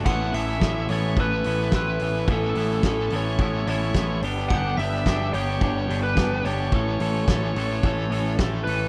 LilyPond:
<<
  \new Staff \with { instrumentName = "Glockenspiel" } { \time 4/4 \key a \mixolydian \tempo 4 = 108 cis''''8 cis''''4 a'''8 e'''4 e'''4 | e'''4 e'''8 a'''4 a'''4 r8 | d''''8 b'''4 g'''4~ g'''16 g'''8. a'''8~ | a'''2. r4 | }
  \new Staff \with { instrumentName = "Lead electric guitar" } { \time 4/4 \key a \mixolydian fis''8 e''4 cis''8 b'4 b'4 | a'4 a'8 cis''4 cis''4 r8 | fis''8 e''4 cis''4~ cis''16 b'8. cis''8~ | cis''2. r8 b'8 | }
  \new Staff \with { instrumentName = "Clean electric guitar" } { \time 4/4 \key a \mixolydian <a, e b cis' e'>8 <a, e b cis' e'>8 <a, e b cis' e'>8 <a, e b cis' e'>8 <a, e b cis' e'>8 <a, e b cis' e'>8 <a, e b cis' e'>8 <a, e b cis' e'>8 | <a, e b cis' e'>8 <a, e b cis' e'>8 <a, e b cis' e'>8 <a, e b cis' e'>8 <a, e b cis' e'>8 <a, e b cis' e'>8 <a, e b cis' e'>8 <g, d g b d' g'>8 | <g, d g b d' g'>8 <g, d g b d' g'>8 <g, d g b d' g'>8 <g, d g b d' g'>8 <g, d g b d' g'>8 <g, d g b d' g'>8 <g, d g b d' g'>8 <g, d g b d' g'>8 | <a, e a cis' a'>8 <a, e a cis' a'>8 <a, e a cis' a'>8 <a, e a cis' a'>8 <a, e a cis' a'>8 <a, e a cis' a'>8 <a, e a cis' a'>8 <a, e a cis' a'>8 | }
  \new Staff \with { instrumentName = "Overdriven electric guitar" } { \time 4/4 \key a \mixolydian <a, e a cis' a'>8 <a, e a cis' a'>8 <a, e a cis' a'>8 <a, e a cis' a'>8 <a, e a cis' a'>8 <a, e a cis' a'>8 <a, e a cis' a'>8 <a, e a cis' a'>8 | <a, e a cis' a'>8 <a, e a cis' a'>8 <a, e a cis' a'>8 <a, e a cis' a'>8 <a, e a cis' a'>8 <a, e a cis' a'>8 <a, e a cis' a'>8 <g, d g b d' g'>8 | <g, d g b d' g'>8 <g, d g b d' g'>8 <g, d g b d' g'>8 <g, d g b d' g'>8 <g, d g b d' g'>8 <g, d g b d' g'>8 <g, d g b d' g'>8 <g, d g b d' g'>8 | <a, e a cis' a'>8 <a, e a cis' a'>8 <a, e a cis' a'>8 <a, e a cis' a'>8 <a, e a cis' a'>8 <a, e a cis' a'>8 <a, e a cis' a'>8 <a, e a cis' a'>8 | }
  \new Staff \with { instrumentName = "Picked electric bass" } { \clef bass \time 4/4 \key a \mixolydian a,,8 a,,8 a,,8 a,,8 a,,8 a,,8 a,,8 a,,8 | a,,8 a,,8 a,,8 a,,8 a,,8 a,,8 a,,8 g,,8 | g,,8 g,,8 g,,8 g,,8 g,,8 g,,8 g,,8 g,,8 | a,,8 a,,8 a,,8 a,,8 a,,8 a,,8 a,,8 a,,8 | }
  \new DrumStaff \with { instrumentName = "Drums" } \drummode { \time 4/4 <cymc bd>8 hho8 <bd sn>8 hho8 bd8 hho8 <bd sn>8 hho8 | bd8 hho8 <bd sn>8 hho8 bd8 hho8 <bd sn>8 hho8 | bd8 hho8 <bd sn>8 hho8 bd8 hho8 <bd sn>8 hho8 | bd8 hho8 <bd sn>8 hho8 bd8 hho8 <bd sn>8 hho8 | }
>>